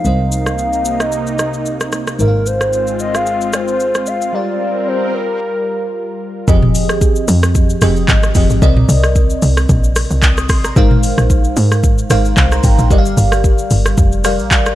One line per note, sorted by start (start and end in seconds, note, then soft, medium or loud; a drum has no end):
0.00 2.15 C3 medium
0.00 0.32 F5 loud
0.05 2.15 C2 medium
0.05 2.17 C3 medium
0.05 2.17 A#3 medium
0.05 2.15 C4 medium
0.05 2.17 D#4 medium
0.05 2.15 A#4 medium
0.05 2.16 C5 medium
0.05 2.16 D#5 medium
0.05 shaker medium
0.32 1.02 F5 loud
0.32 shaker medium
0.46 cross-stick medium
0.46 shaker soft
0.58 shaker medium
0.73 shaker soft
0.85 shaker medium
1.00 1.93 D#5 medium
1.00 cross-stick medium
1.00 shaker medium
1.12 shaker medium
1.27 shaker medium
1.39 cross-stick medium
1.39 shaker medium
1.54 shaker soft
1.66 shaker medium
1.80 cross-stick medium
1.80 shaker medium
1.92 cross-stick medium
1.92 shaker medium
2.07 cross-stick medium
2.07 shaker medium
2.18 4.29 G#1 medium
2.18 4.29 G#3 medium
2.18 4.31 G#3 medium
2.18 4.31 C4 medium
2.18 4.29 D#4 medium
2.18 6.44 F4 medium
2.18 4.30 A#4 medium
2.18 2.48 A#4 loud
2.18 4.30 C5 medium
2.18 2.27 E5 medium
2.18 swell medium
2.18 shaker medium
2.28 4.34 F5 medium
2.46 2.73 C5 medium
2.46 shaker medium
2.61 cross-stick medium
2.61 shaker soft
2.73 2.98 C5 loud
2.73 shaker medium
2.87 shaker soft
2.99 3.16 D#5 loud
2.99 shaker medium
3.15 3.55 F5 loud
3.15 cross-stick medium
3.15 shaker medium
3.26 shaker medium
3.41 shaker soft
3.53 4.09 C5 loud
3.53 cross-stick loud
3.53 shaker medium
3.68 shaker soft
3.80 shaker medium
3.95 cross-stick medium
3.95 shaker medium
4.06 4.36 F5 loud
4.06 shaker medium
4.22 shaker medium
4.33 6.43 G3 medium
4.33 6.46 G3 medium
4.33 6.44 G4 medium
4.33 6.46 A#4 medium
4.33 6.44 A#4 medium
4.33 4.89 D5 loud
4.33 6.44 D5 medium
4.33 6.45 F5 medium
4.88 5.16 C5 medium
5.14 6.21 A#4 medium
6.48 6.91 F1 loud
6.48 7.34 F3 loud
6.48 7.34 C4 medium
6.48 7.34 G4 medium
6.48 7.35 G#4 medium
6.48 7.35 D#5 loud
6.48 kick loud
6.48 shaker medium
6.62 mid tom loud
6.75 open hi-hat medium
6.75 shaker medium
6.89 7.23 G1 medium
6.89 cross-stick medium
6.89 shaker soft
7.01 kick loud
7.01 shaker medium
7.16 shaker medium
7.28 7.75 F2 loud
7.28 open hi-hat medium
7.28 shaker loud
7.43 cross-stick loud
7.43 shaker medium
7.55 kick loud
7.55 shaker medium
7.70 shaker medium
7.81 8.05 F1 loud
7.81 8.26 F3 medium
7.81 8.26 C4 medium
7.81 8.26 G4 medium
7.81 8.26 G#4 medium
7.81 8.26 D#5 loud
7.81 cross-stick loud
7.81 open hi-hat medium
7.81 shaker medium
7.96 shaker soft
8.08 8.32 G#1 medium
8.08 kick loud
8.08 clap loud
8.08 shaker medium
8.23 cross-stick medium
8.23 shaker medium
8.35 8.48 F1 medium
8.35 8.57 F3 medium
8.35 8.57 C4 medium
8.35 8.58 G4 medium
8.35 8.58 G#4 medium
8.35 8.58 D#5 medium
8.35 kick medium
8.35 open hi-hat medium
8.35 shaker medium
8.50 8.60 G#1 medium
8.50 shaker medium
8.62 8.86 C2 loud
8.62 9.48 C3 medium
8.62 9.48 C4 medium
8.62 9.49 A#4 medium
8.62 9.49 D5 medium
8.62 9.49 D#5 loud
8.62 kick loud
8.62 shaker medium
8.77 mid tom loud
8.89 9.36 C2 loud
8.89 open hi-hat medium
8.89 shaker medium
9.04 cross-stick medium
9.04 shaker soft
9.16 kick loud
9.16 shaker medium
9.30 shaker medium
9.42 9.66 C2 loud
9.42 open hi-hat medium
9.42 shaker loud
9.57 cross-stick loud
9.57 shaker medium
9.69 10.06 A#1 loud
9.69 kick loud
9.69 shaker medium
9.84 shaker medium
9.96 cross-stick loud
9.96 open hi-hat medium
9.96 shaker loud
10.11 10.51 C2 medium
10.11 shaker soft
10.23 10.48 D#6 medium
10.23 kick loud
10.23 clap loud
10.23 shaker medium
10.37 cross-stick medium
10.37 shaker medium
10.49 10.73 A#1 medium
10.49 10.64 C6 medium
10.49 kick medium
10.49 cross-stick loud
10.49 open hi-hat medium
10.49 shaker medium
10.64 10.90 A#5 medium
10.64 cross-stick medium
10.64 shaker medium
10.76 11.13 G#1 loud
10.76 11.62 G#3 loud
10.76 11.63 D#4 medium
10.76 11.63 A#4 medium
10.76 11.63 C5 medium
10.76 11.63 F5 loud
10.76 kick loud
10.76 shaker medium
10.91 mid tom loud
11.03 open hi-hat medium
11.03 shaker loud
11.18 11.52 A#1 medium
11.18 cross-stick medium
11.18 shaker soft
11.30 kick loud
11.30 shaker medium
11.44 shaker medium
11.57 12.04 G#2 loud
11.57 open hi-hat medium
11.57 shaker loud
11.72 cross-stick medium
11.72 shaker medium
11.83 kick loud
11.83 shaker medium
11.98 shaker medium
12.10 12.34 G#1 medium
12.10 12.54 G#3 medium
12.10 12.54 D#4 medium
12.10 12.55 A#4 medium
12.10 12.55 C5 medium
12.10 12.38 F5 loud
12.10 cross-stick loud
12.10 open hi-hat medium
12.10 shaker loud
12.25 shaker soft
12.37 12.60 C2 medium
12.37 12.51 C6 medium
12.37 kick loud
12.37 clap loud
12.37 shaker medium
12.52 12.64 A#5 medium
12.52 cross-stick medium
12.52 shaker medium
12.63 12.77 G#1 medium
12.63 12.78 G5 medium
12.63 kick medium
12.63 open hi-hat medium
12.63 shaker medium
12.78 12.92 A#1 loud
12.78 12.97 F5 medium
12.78 shaker medium
12.90 13.14 G1 loud
12.90 13.77 G3 loud
12.90 13.77 G4 medium
12.90 13.77 A#4 medium
12.90 13.77 D5 medium
12.90 12.98 D#5 medium
12.90 kick loud
12.90 shaker medium
12.98 13.81 F5 loud
13.06 shaker medium
13.17 13.64 G1 loud
13.17 open hi-hat medium
13.17 shaker loud
13.32 cross-stick loud
13.32 shaker soft
13.44 kick medium
13.44 shaker medium
13.58 shaker medium
13.71 13.94 G1 loud
13.71 open hi-hat medium
13.71 shaker medium
13.86 cross-stick loud
13.86 shaker medium
13.97 14.41 F1 loud
13.97 kick loud
13.97 shaker medium
14.12 shaker medium
14.24 14.68 G3 medium
14.24 14.68 G4 medium
14.24 14.69 A#4 medium
14.24 14.69 D5 medium
14.24 14.69 F5 loud
14.24 cross-stick loud
14.24 open hi-hat medium
14.24 shaker loud
14.39 14.73 A#1 medium
14.39 shaker soft
14.51 kick loud
14.51 clap loud
14.51 shaker medium
14.66 cross-stick loud
14.66 shaker medium